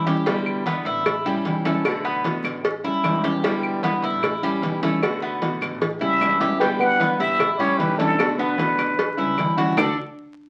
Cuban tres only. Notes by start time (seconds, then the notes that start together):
0.07 G4
0.26 G3
0.67 B3
0.86 E4
1.26 G3
1.65 A3
2.05 B3
2.84 E4
3.24 G4
3.44 G3
3.84 B3
4.04 E4
4.43 G3
4.83 A3
5.22 B3
6.01 E4
6.41 G4
6.61 G3
7.00 B3
7.20 E4
7.60 G3
8.00 A3
8.39 B3
9.18 E4
9.58 F#4
9.77 D4 A4 D5